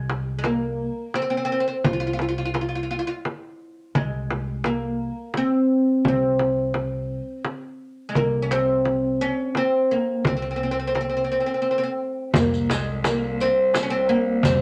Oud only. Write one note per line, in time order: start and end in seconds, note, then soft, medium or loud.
0.00 0.37 G#3 medium
0.39 0.44 G#3 medium
0.45 1.17 A#3 medium
1.15 1.21 C4 medium
1.22 1.29 C4 medium
1.30 1.36 C4 medium
1.37 1.44 C4 medium
1.45 1.51 C4 medium
1.52 1.59 C4 soft
1.60 1.66 C4 medium
1.68 1.75 C4 medium
1.85 1.92 F4 medium
1.93 1.99 F4 medium
2.00 2.06 F4 medium
2.07 2.12 F4 soft
2.13 2.20 F4 medium
2.21 2.27 F4 soft
2.29 2.36 F4 medium
2.38 2.44 F4 medium
2.45 2.52 F4 medium
2.54 2.60 F4 medium
2.61 2.67 F4 soft
2.69 2.74 F4 soft
2.75 2.82 F4 medium
2.83 2.89 F4 soft
2.91 2.97 F4 medium
2.99 3.05 F4 medium
3.07 3.13 F4 medium
3.95 4.65 G#3 medium
4.66 5.37 A#3 medium
5.37 6.07 C4 medium
6.08 7.43 C4 medium
8.09 8.16 G#3 medium
8.16 8.45 A#3 medium
8.42 8.50 C#4 medium
8.52 9.23 C4 medium
9.21 9.57 C#4 medium
9.57 9.92 C4 medium
9.91 10.27 A#3 medium
10.27 10.33 C4 medium
10.37 10.41 C4 soft
10.42 10.48 C4 medium
10.51 10.55 C4 soft
10.56 10.62 C4 medium
10.63 10.70 C4 medium
10.71 10.78 C4 medium
10.79 10.86 C4 soft
10.87 10.93 C4 medium
10.95 11.00 C4 soft
11.01 11.08 C4 medium
11.09 11.16 C4 soft
11.17 11.23 C4 soft
11.24 11.30 C4 soft
11.32 11.38 C4 medium
11.40 11.45 C4 soft
11.46 11.53 C4 soft
11.54 11.61 C4 soft
11.62 11.68 C4 medium
11.71 11.76 C4 soft
11.78 11.82 C4 medium
11.83 11.90 C4 medium
12.35 12.70 A#3 medium
12.71 13.06 G#3 medium
13.06 13.42 A#3 medium
13.41 13.74 C4 medium
13.75 13.82 C4 medium
13.83 13.89 C#4 medium
13.90 14.11 C4 medium
14.09 14.45 A#3 medium
14.45 14.62 C4 medium